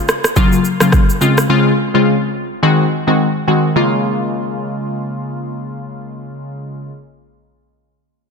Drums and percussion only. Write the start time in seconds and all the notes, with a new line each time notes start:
0.09 cross-stick, shaker
0.24 cross-stick, shaker
0.36 kick, shaker
0.52 shaker
0.65 shaker
0.80 cross-stick, shaker
0.92 kick, cross-stick, shaker
1.10 shaker
1.21 shaker
1.38 cross-stick, shaker